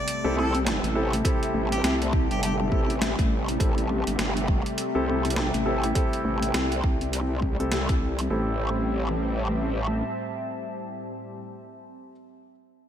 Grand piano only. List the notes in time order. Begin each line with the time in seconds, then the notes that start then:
0.24 C4 E4 G4 A4
0.36 C4 E4 G4 A4
0.95 C4 E4 G4 A4
1.25 C4 E4 G4 A4
2.71 C4 E4 G4 A4
3.60 C4 E4 G4 A4
4.95 C4 E4 G4 A4
5.07 C4 E4 G4 A4
5.66 C4 E4 G4 A4
5.95 C4 E4 G4 A4
7.60 C4 E4 G4 A4
8.30 C4 E4 G4 A4